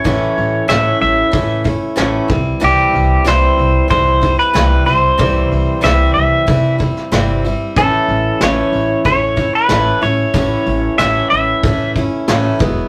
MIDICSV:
0, 0, Header, 1, 5, 480
1, 0, Start_track
1, 0, Tempo, 643777
1, 39, Time_signature, 4, 2, 24, 8
1, 9606, End_track
2, 0, Start_track
2, 0, Title_t, "Pedal steel guitar"
2, 0, Program_c, 0, 26
2, 0, Note_on_c, 0, 73, 76
2, 511, Note_off_c, 0, 73, 0
2, 514, Note_on_c, 0, 76, 95
2, 748, Note_off_c, 0, 76, 0
2, 757, Note_on_c, 0, 76, 85
2, 1205, Note_off_c, 0, 76, 0
2, 1971, Note_on_c, 0, 67, 76
2, 2445, Note_on_c, 0, 72, 79
2, 2455, Note_off_c, 0, 67, 0
2, 2902, Note_off_c, 0, 72, 0
2, 2911, Note_on_c, 0, 72, 86
2, 3271, Note_off_c, 0, 72, 0
2, 3274, Note_on_c, 0, 71, 79
2, 3623, Note_off_c, 0, 71, 0
2, 3626, Note_on_c, 0, 72, 76
2, 4353, Note_on_c, 0, 76, 98
2, 4368, Note_off_c, 0, 72, 0
2, 4568, Note_off_c, 0, 76, 0
2, 4577, Note_on_c, 0, 76, 76
2, 5032, Note_off_c, 0, 76, 0
2, 5798, Note_on_c, 0, 69, 78
2, 6287, Note_off_c, 0, 69, 0
2, 6289, Note_on_c, 0, 73, 77
2, 6729, Note_off_c, 0, 73, 0
2, 6754, Note_on_c, 0, 73, 81
2, 7120, Note_off_c, 0, 73, 0
2, 7123, Note_on_c, 0, 71, 76
2, 7476, Note_on_c, 0, 73, 76
2, 7487, Note_off_c, 0, 71, 0
2, 8186, Note_off_c, 0, 73, 0
2, 8189, Note_on_c, 0, 76, 98
2, 8417, Note_off_c, 0, 76, 0
2, 8426, Note_on_c, 0, 76, 80
2, 8882, Note_off_c, 0, 76, 0
2, 9606, End_track
3, 0, Start_track
3, 0, Title_t, "Steel-string acoustic guitar"
3, 0, Program_c, 1, 25
3, 32, Note_on_c, 1, 45, 68
3, 38, Note_on_c, 1, 52, 68
3, 38, Note_on_c, 1, 57, 64
3, 41, Note_on_c, 1, 61, 77
3, 49, Note_on_c, 1, 64, 76
3, 497, Note_off_c, 1, 45, 0
3, 506, Note_on_c, 1, 45, 75
3, 509, Note_off_c, 1, 52, 0
3, 509, Note_off_c, 1, 57, 0
3, 512, Note_off_c, 1, 61, 0
3, 512, Note_on_c, 1, 52, 71
3, 518, Note_on_c, 1, 57, 75
3, 519, Note_off_c, 1, 64, 0
3, 521, Note_on_c, 1, 61, 72
3, 522, Note_on_c, 1, 64, 74
3, 977, Note_off_c, 1, 52, 0
3, 980, Note_on_c, 1, 52, 53
3, 983, Note_off_c, 1, 57, 0
3, 984, Note_off_c, 1, 61, 0
3, 990, Note_off_c, 1, 45, 0
3, 992, Note_on_c, 1, 57, 56
3, 993, Note_on_c, 1, 61, 61
3, 1000, Note_off_c, 1, 64, 0
3, 1003, Note_on_c, 1, 64, 56
3, 1216, Note_off_c, 1, 64, 0
3, 1225, Note_on_c, 1, 64, 50
3, 1227, Note_off_c, 1, 52, 0
3, 1229, Note_off_c, 1, 61, 0
3, 1233, Note_off_c, 1, 57, 0
3, 1238, Note_on_c, 1, 61, 43
3, 1249, Note_on_c, 1, 57, 36
3, 1459, Note_off_c, 1, 57, 0
3, 1459, Note_on_c, 1, 45, 75
3, 1464, Note_off_c, 1, 61, 0
3, 1465, Note_on_c, 1, 52, 76
3, 1468, Note_on_c, 1, 57, 79
3, 1469, Note_off_c, 1, 64, 0
3, 1473, Note_on_c, 1, 61, 76
3, 1477, Note_on_c, 1, 64, 77
3, 1692, Note_off_c, 1, 64, 0
3, 1701, Note_on_c, 1, 64, 46
3, 1706, Note_off_c, 1, 45, 0
3, 1709, Note_off_c, 1, 52, 0
3, 1711, Note_off_c, 1, 57, 0
3, 1713, Note_off_c, 1, 61, 0
3, 1717, Note_on_c, 1, 60, 47
3, 1726, Note_on_c, 1, 55, 40
3, 1938, Note_on_c, 1, 48, 63
3, 1939, Note_off_c, 1, 55, 0
3, 1941, Note_off_c, 1, 60, 0
3, 1941, Note_off_c, 1, 64, 0
3, 1942, Note_on_c, 1, 52, 71
3, 1948, Note_on_c, 1, 55, 71
3, 1950, Note_on_c, 1, 60, 65
3, 1950, Note_on_c, 1, 64, 71
3, 2411, Note_off_c, 1, 48, 0
3, 2416, Note_off_c, 1, 55, 0
3, 2420, Note_on_c, 1, 48, 73
3, 2422, Note_off_c, 1, 52, 0
3, 2422, Note_off_c, 1, 60, 0
3, 2425, Note_on_c, 1, 52, 74
3, 2425, Note_on_c, 1, 55, 69
3, 2431, Note_off_c, 1, 64, 0
3, 2431, Note_on_c, 1, 60, 82
3, 2434, Note_on_c, 1, 64, 77
3, 2890, Note_off_c, 1, 52, 0
3, 2893, Note_on_c, 1, 52, 51
3, 2898, Note_off_c, 1, 55, 0
3, 2904, Note_off_c, 1, 60, 0
3, 2905, Note_off_c, 1, 48, 0
3, 2907, Note_on_c, 1, 55, 54
3, 2913, Note_off_c, 1, 64, 0
3, 2913, Note_on_c, 1, 60, 52
3, 2916, Note_on_c, 1, 64, 58
3, 3133, Note_off_c, 1, 64, 0
3, 3141, Note_off_c, 1, 52, 0
3, 3142, Note_on_c, 1, 64, 47
3, 3145, Note_off_c, 1, 60, 0
3, 3148, Note_off_c, 1, 55, 0
3, 3154, Note_on_c, 1, 60, 46
3, 3164, Note_on_c, 1, 55, 35
3, 3381, Note_off_c, 1, 55, 0
3, 3381, Note_on_c, 1, 48, 73
3, 3382, Note_off_c, 1, 60, 0
3, 3385, Note_on_c, 1, 52, 65
3, 3386, Note_off_c, 1, 64, 0
3, 3390, Note_on_c, 1, 55, 64
3, 3391, Note_on_c, 1, 60, 72
3, 3396, Note_on_c, 1, 64, 72
3, 3613, Note_off_c, 1, 64, 0
3, 3622, Note_on_c, 1, 64, 45
3, 3624, Note_off_c, 1, 60, 0
3, 3625, Note_off_c, 1, 48, 0
3, 3627, Note_off_c, 1, 52, 0
3, 3630, Note_off_c, 1, 55, 0
3, 3633, Note_on_c, 1, 60, 37
3, 3647, Note_on_c, 1, 55, 35
3, 3860, Note_off_c, 1, 55, 0
3, 3860, Note_on_c, 1, 48, 65
3, 3865, Note_off_c, 1, 64, 0
3, 3866, Note_off_c, 1, 60, 0
3, 3866, Note_on_c, 1, 52, 67
3, 3869, Note_on_c, 1, 55, 77
3, 3875, Note_on_c, 1, 60, 73
3, 3877, Note_on_c, 1, 64, 65
3, 4323, Note_off_c, 1, 48, 0
3, 4332, Note_on_c, 1, 48, 69
3, 4334, Note_off_c, 1, 52, 0
3, 4337, Note_off_c, 1, 55, 0
3, 4337, Note_on_c, 1, 52, 68
3, 4340, Note_off_c, 1, 60, 0
3, 4346, Note_on_c, 1, 55, 74
3, 4347, Note_off_c, 1, 64, 0
3, 4349, Note_on_c, 1, 60, 71
3, 4350, Note_on_c, 1, 64, 70
3, 4816, Note_off_c, 1, 55, 0
3, 4818, Note_off_c, 1, 52, 0
3, 4820, Note_off_c, 1, 48, 0
3, 4821, Note_on_c, 1, 52, 48
3, 4825, Note_on_c, 1, 55, 50
3, 4828, Note_off_c, 1, 60, 0
3, 4837, Note_on_c, 1, 60, 57
3, 4840, Note_off_c, 1, 64, 0
3, 4843, Note_on_c, 1, 64, 65
3, 5049, Note_off_c, 1, 64, 0
3, 5058, Note_on_c, 1, 64, 43
3, 5064, Note_off_c, 1, 52, 0
3, 5065, Note_off_c, 1, 60, 0
3, 5066, Note_off_c, 1, 55, 0
3, 5074, Note_on_c, 1, 60, 37
3, 5081, Note_on_c, 1, 55, 40
3, 5303, Note_off_c, 1, 64, 0
3, 5305, Note_on_c, 1, 48, 74
3, 5306, Note_on_c, 1, 52, 69
3, 5309, Note_off_c, 1, 55, 0
3, 5311, Note_off_c, 1, 60, 0
3, 5318, Note_on_c, 1, 55, 78
3, 5320, Note_on_c, 1, 60, 73
3, 5320, Note_on_c, 1, 64, 70
3, 5543, Note_off_c, 1, 64, 0
3, 5547, Note_off_c, 1, 48, 0
3, 5547, Note_off_c, 1, 52, 0
3, 5552, Note_on_c, 1, 64, 45
3, 5553, Note_off_c, 1, 55, 0
3, 5554, Note_off_c, 1, 60, 0
3, 5563, Note_on_c, 1, 60, 45
3, 5576, Note_on_c, 1, 55, 40
3, 5790, Note_off_c, 1, 64, 0
3, 5790, Note_on_c, 1, 45, 67
3, 5793, Note_on_c, 1, 52, 66
3, 5794, Note_off_c, 1, 55, 0
3, 5795, Note_off_c, 1, 60, 0
3, 5797, Note_on_c, 1, 57, 70
3, 5804, Note_on_c, 1, 61, 67
3, 5809, Note_on_c, 1, 64, 72
3, 6261, Note_off_c, 1, 45, 0
3, 6269, Note_off_c, 1, 57, 0
3, 6270, Note_on_c, 1, 45, 71
3, 6272, Note_off_c, 1, 61, 0
3, 6275, Note_off_c, 1, 52, 0
3, 6278, Note_on_c, 1, 52, 67
3, 6278, Note_on_c, 1, 57, 78
3, 6281, Note_on_c, 1, 61, 80
3, 6283, Note_off_c, 1, 64, 0
3, 6286, Note_on_c, 1, 64, 75
3, 6741, Note_off_c, 1, 52, 0
3, 6742, Note_off_c, 1, 57, 0
3, 6744, Note_on_c, 1, 52, 53
3, 6750, Note_off_c, 1, 45, 0
3, 6751, Note_on_c, 1, 57, 54
3, 6752, Note_off_c, 1, 61, 0
3, 6761, Note_on_c, 1, 61, 55
3, 6763, Note_off_c, 1, 64, 0
3, 6765, Note_on_c, 1, 64, 59
3, 6973, Note_off_c, 1, 64, 0
3, 6982, Note_off_c, 1, 61, 0
3, 6982, Note_on_c, 1, 64, 43
3, 6987, Note_off_c, 1, 52, 0
3, 6990, Note_off_c, 1, 57, 0
3, 6991, Note_on_c, 1, 61, 37
3, 7005, Note_on_c, 1, 57, 42
3, 7223, Note_off_c, 1, 57, 0
3, 7224, Note_on_c, 1, 45, 71
3, 7226, Note_off_c, 1, 64, 0
3, 7227, Note_off_c, 1, 61, 0
3, 7227, Note_on_c, 1, 52, 65
3, 7232, Note_on_c, 1, 57, 70
3, 7236, Note_on_c, 1, 61, 68
3, 7237, Note_on_c, 1, 64, 77
3, 7458, Note_off_c, 1, 64, 0
3, 7467, Note_on_c, 1, 64, 47
3, 7468, Note_off_c, 1, 45, 0
3, 7469, Note_off_c, 1, 52, 0
3, 7470, Note_off_c, 1, 61, 0
3, 7471, Note_off_c, 1, 57, 0
3, 7479, Note_on_c, 1, 61, 43
3, 7487, Note_on_c, 1, 57, 35
3, 7707, Note_on_c, 1, 45, 70
3, 7708, Note_off_c, 1, 57, 0
3, 7709, Note_off_c, 1, 64, 0
3, 7712, Note_on_c, 1, 52, 70
3, 7715, Note_off_c, 1, 61, 0
3, 7717, Note_on_c, 1, 57, 74
3, 7724, Note_on_c, 1, 61, 66
3, 7727, Note_on_c, 1, 64, 80
3, 8187, Note_off_c, 1, 45, 0
3, 8195, Note_off_c, 1, 57, 0
3, 8195, Note_on_c, 1, 45, 63
3, 8199, Note_off_c, 1, 61, 0
3, 8200, Note_off_c, 1, 52, 0
3, 8203, Note_on_c, 1, 52, 67
3, 8207, Note_on_c, 1, 57, 72
3, 8208, Note_off_c, 1, 64, 0
3, 8211, Note_on_c, 1, 64, 83
3, 8213, Note_on_c, 1, 61, 76
3, 8676, Note_off_c, 1, 45, 0
3, 8676, Note_off_c, 1, 52, 0
3, 8678, Note_on_c, 1, 52, 53
3, 8681, Note_off_c, 1, 57, 0
3, 8684, Note_off_c, 1, 61, 0
3, 8690, Note_on_c, 1, 57, 57
3, 8697, Note_off_c, 1, 64, 0
3, 8697, Note_on_c, 1, 61, 54
3, 8700, Note_on_c, 1, 64, 58
3, 8905, Note_off_c, 1, 64, 0
3, 8914, Note_on_c, 1, 64, 46
3, 8917, Note_off_c, 1, 52, 0
3, 8923, Note_off_c, 1, 57, 0
3, 8923, Note_off_c, 1, 61, 0
3, 8932, Note_on_c, 1, 61, 49
3, 8938, Note_on_c, 1, 57, 36
3, 9153, Note_off_c, 1, 57, 0
3, 9154, Note_on_c, 1, 45, 70
3, 9156, Note_off_c, 1, 64, 0
3, 9157, Note_on_c, 1, 52, 75
3, 9159, Note_off_c, 1, 61, 0
3, 9162, Note_on_c, 1, 57, 85
3, 9166, Note_on_c, 1, 64, 88
3, 9168, Note_on_c, 1, 61, 82
3, 9379, Note_off_c, 1, 64, 0
3, 9388, Note_on_c, 1, 64, 55
3, 9396, Note_off_c, 1, 45, 0
3, 9398, Note_off_c, 1, 52, 0
3, 9398, Note_off_c, 1, 61, 0
3, 9400, Note_off_c, 1, 57, 0
3, 9401, Note_on_c, 1, 59, 51
3, 9404, Note_on_c, 1, 56, 47
3, 9409, Note_on_c, 1, 54, 43
3, 9606, Note_off_c, 1, 54, 0
3, 9606, Note_off_c, 1, 56, 0
3, 9606, Note_off_c, 1, 59, 0
3, 9606, Note_off_c, 1, 64, 0
3, 9606, End_track
4, 0, Start_track
4, 0, Title_t, "Upright bass"
4, 0, Program_c, 2, 32
4, 36, Note_on_c, 2, 33, 76
4, 187, Note_off_c, 2, 33, 0
4, 281, Note_on_c, 2, 33, 75
4, 430, Note_off_c, 2, 33, 0
4, 519, Note_on_c, 2, 33, 85
4, 668, Note_off_c, 2, 33, 0
4, 754, Note_on_c, 2, 33, 78
4, 904, Note_off_c, 2, 33, 0
4, 994, Note_on_c, 2, 45, 73
4, 1294, Note_off_c, 2, 45, 0
4, 1471, Note_on_c, 2, 33, 85
4, 1622, Note_off_c, 2, 33, 0
4, 1712, Note_on_c, 2, 36, 77
4, 1862, Note_off_c, 2, 36, 0
4, 1956, Note_on_c, 2, 36, 82
4, 2105, Note_off_c, 2, 36, 0
4, 2191, Note_on_c, 2, 36, 82
4, 2341, Note_off_c, 2, 36, 0
4, 2428, Note_on_c, 2, 36, 77
4, 2579, Note_off_c, 2, 36, 0
4, 2666, Note_on_c, 2, 36, 80
4, 2817, Note_off_c, 2, 36, 0
4, 2911, Note_on_c, 2, 36, 75
4, 3211, Note_off_c, 2, 36, 0
4, 3394, Note_on_c, 2, 36, 83
4, 3542, Note_off_c, 2, 36, 0
4, 3631, Note_on_c, 2, 36, 77
4, 3781, Note_off_c, 2, 36, 0
4, 3872, Note_on_c, 2, 36, 80
4, 4021, Note_off_c, 2, 36, 0
4, 4113, Note_on_c, 2, 36, 78
4, 4261, Note_off_c, 2, 36, 0
4, 4351, Note_on_c, 2, 36, 77
4, 4500, Note_off_c, 2, 36, 0
4, 4590, Note_on_c, 2, 36, 71
4, 4739, Note_off_c, 2, 36, 0
4, 4833, Note_on_c, 2, 48, 73
4, 5131, Note_off_c, 2, 48, 0
4, 5311, Note_on_c, 2, 31, 81
4, 5610, Note_off_c, 2, 31, 0
4, 5787, Note_on_c, 2, 33, 72
4, 5938, Note_off_c, 2, 33, 0
4, 6028, Note_on_c, 2, 33, 78
4, 6178, Note_off_c, 2, 33, 0
4, 6268, Note_on_c, 2, 33, 82
4, 6418, Note_off_c, 2, 33, 0
4, 6505, Note_on_c, 2, 33, 75
4, 6657, Note_off_c, 2, 33, 0
4, 6749, Note_on_c, 2, 33, 73
4, 7050, Note_off_c, 2, 33, 0
4, 7231, Note_on_c, 2, 33, 80
4, 7381, Note_off_c, 2, 33, 0
4, 7476, Note_on_c, 2, 33, 80
4, 7625, Note_off_c, 2, 33, 0
4, 7711, Note_on_c, 2, 33, 78
4, 7862, Note_off_c, 2, 33, 0
4, 7952, Note_on_c, 2, 33, 84
4, 8103, Note_off_c, 2, 33, 0
4, 8195, Note_on_c, 2, 33, 83
4, 8345, Note_off_c, 2, 33, 0
4, 8436, Note_on_c, 2, 33, 76
4, 8586, Note_off_c, 2, 33, 0
4, 8674, Note_on_c, 2, 45, 80
4, 8976, Note_off_c, 2, 45, 0
4, 9159, Note_on_c, 2, 33, 88
4, 9309, Note_off_c, 2, 33, 0
4, 9398, Note_on_c, 2, 28, 81
4, 9549, Note_off_c, 2, 28, 0
4, 9606, End_track
5, 0, Start_track
5, 0, Title_t, "Drums"
5, 37, Note_on_c, 9, 46, 56
5, 38, Note_on_c, 9, 36, 86
5, 112, Note_off_c, 9, 36, 0
5, 112, Note_off_c, 9, 46, 0
5, 280, Note_on_c, 9, 46, 45
5, 355, Note_off_c, 9, 46, 0
5, 516, Note_on_c, 9, 38, 87
5, 516, Note_on_c, 9, 46, 54
5, 591, Note_off_c, 9, 38, 0
5, 591, Note_off_c, 9, 46, 0
5, 756, Note_on_c, 9, 46, 47
5, 830, Note_off_c, 9, 46, 0
5, 994, Note_on_c, 9, 36, 88
5, 994, Note_on_c, 9, 46, 56
5, 1069, Note_off_c, 9, 36, 0
5, 1069, Note_off_c, 9, 46, 0
5, 1230, Note_on_c, 9, 46, 45
5, 1232, Note_on_c, 9, 36, 70
5, 1305, Note_off_c, 9, 46, 0
5, 1307, Note_off_c, 9, 36, 0
5, 1472, Note_on_c, 9, 38, 89
5, 1472, Note_on_c, 9, 46, 55
5, 1547, Note_off_c, 9, 38, 0
5, 1547, Note_off_c, 9, 46, 0
5, 1713, Note_on_c, 9, 36, 92
5, 1715, Note_on_c, 9, 46, 44
5, 1787, Note_off_c, 9, 36, 0
5, 1789, Note_off_c, 9, 46, 0
5, 1954, Note_on_c, 9, 46, 55
5, 2029, Note_off_c, 9, 46, 0
5, 2199, Note_on_c, 9, 46, 41
5, 2273, Note_off_c, 9, 46, 0
5, 2436, Note_on_c, 9, 38, 92
5, 2436, Note_on_c, 9, 46, 57
5, 2511, Note_off_c, 9, 38, 0
5, 2511, Note_off_c, 9, 46, 0
5, 2676, Note_on_c, 9, 46, 42
5, 2751, Note_off_c, 9, 46, 0
5, 2913, Note_on_c, 9, 36, 94
5, 2914, Note_on_c, 9, 46, 61
5, 2987, Note_off_c, 9, 36, 0
5, 2989, Note_off_c, 9, 46, 0
5, 3153, Note_on_c, 9, 36, 70
5, 3153, Note_on_c, 9, 46, 47
5, 3227, Note_off_c, 9, 36, 0
5, 3228, Note_off_c, 9, 46, 0
5, 3277, Note_on_c, 9, 38, 31
5, 3351, Note_off_c, 9, 38, 0
5, 3394, Note_on_c, 9, 38, 95
5, 3394, Note_on_c, 9, 46, 59
5, 3469, Note_off_c, 9, 38, 0
5, 3469, Note_off_c, 9, 46, 0
5, 3634, Note_on_c, 9, 46, 47
5, 3709, Note_off_c, 9, 46, 0
5, 3873, Note_on_c, 9, 36, 99
5, 3874, Note_on_c, 9, 46, 65
5, 3948, Note_off_c, 9, 36, 0
5, 3949, Note_off_c, 9, 46, 0
5, 4117, Note_on_c, 9, 46, 44
5, 4192, Note_off_c, 9, 46, 0
5, 4355, Note_on_c, 9, 38, 91
5, 4355, Note_on_c, 9, 46, 59
5, 4430, Note_off_c, 9, 38, 0
5, 4430, Note_off_c, 9, 46, 0
5, 4594, Note_on_c, 9, 46, 42
5, 4669, Note_off_c, 9, 46, 0
5, 4831, Note_on_c, 9, 36, 90
5, 4831, Note_on_c, 9, 46, 57
5, 4905, Note_off_c, 9, 36, 0
5, 4905, Note_off_c, 9, 46, 0
5, 5071, Note_on_c, 9, 36, 72
5, 5075, Note_on_c, 9, 46, 42
5, 5145, Note_off_c, 9, 36, 0
5, 5149, Note_off_c, 9, 46, 0
5, 5194, Note_on_c, 9, 38, 26
5, 5269, Note_off_c, 9, 38, 0
5, 5310, Note_on_c, 9, 38, 86
5, 5310, Note_on_c, 9, 46, 60
5, 5384, Note_off_c, 9, 38, 0
5, 5384, Note_off_c, 9, 46, 0
5, 5553, Note_on_c, 9, 46, 44
5, 5628, Note_off_c, 9, 46, 0
5, 5789, Note_on_c, 9, 36, 97
5, 5790, Note_on_c, 9, 46, 54
5, 5864, Note_off_c, 9, 36, 0
5, 5865, Note_off_c, 9, 46, 0
5, 6031, Note_on_c, 9, 46, 39
5, 6105, Note_off_c, 9, 46, 0
5, 6269, Note_on_c, 9, 38, 94
5, 6269, Note_on_c, 9, 46, 56
5, 6343, Note_off_c, 9, 38, 0
5, 6343, Note_off_c, 9, 46, 0
5, 6508, Note_on_c, 9, 46, 45
5, 6582, Note_off_c, 9, 46, 0
5, 6748, Note_on_c, 9, 46, 55
5, 6749, Note_on_c, 9, 36, 93
5, 6823, Note_off_c, 9, 36, 0
5, 6823, Note_off_c, 9, 46, 0
5, 6984, Note_on_c, 9, 46, 48
5, 6988, Note_on_c, 9, 36, 66
5, 7059, Note_off_c, 9, 46, 0
5, 7063, Note_off_c, 9, 36, 0
5, 7224, Note_on_c, 9, 38, 90
5, 7224, Note_on_c, 9, 46, 58
5, 7299, Note_off_c, 9, 38, 0
5, 7299, Note_off_c, 9, 46, 0
5, 7467, Note_on_c, 9, 46, 46
5, 7542, Note_off_c, 9, 46, 0
5, 7706, Note_on_c, 9, 46, 65
5, 7710, Note_on_c, 9, 36, 90
5, 7781, Note_off_c, 9, 46, 0
5, 7785, Note_off_c, 9, 36, 0
5, 7949, Note_on_c, 9, 46, 50
5, 8024, Note_off_c, 9, 46, 0
5, 8192, Note_on_c, 9, 38, 90
5, 8192, Note_on_c, 9, 46, 57
5, 8266, Note_off_c, 9, 38, 0
5, 8266, Note_off_c, 9, 46, 0
5, 8435, Note_on_c, 9, 46, 44
5, 8509, Note_off_c, 9, 46, 0
5, 8675, Note_on_c, 9, 36, 91
5, 8675, Note_on_c, 9, 46, 57
5, 8750, Note_off_c, 9, 36, 0
5, 8750, Note_off_c, 9, 46, 0
5, 8915, Note_on_c, 9, 36, 66
5, 8915, Note_on_c, 9, 46, 45
5, 8989, Note_off_c, 9, 46, 0
5, 8990, Note_off_c, 9, 36, 0
5, 9156, Note_on_c, 9, 38, 95
5, 9156, Note_on_c, 9, 46, 59
5, 9231, Note_off_c, 9, 38, 0
5, 9231, Note_off_c, 9, 46, 0
5, 9397, Note_on_c, 9, 36, 97
5, 9398, Note_on_c, 9, 46, 43
5, 9472, Note_off_c, 9, 36, 0
5, 9472, Note_off_c, 9, 46, 0
5, 9606, End_track
0, 0, End_of_file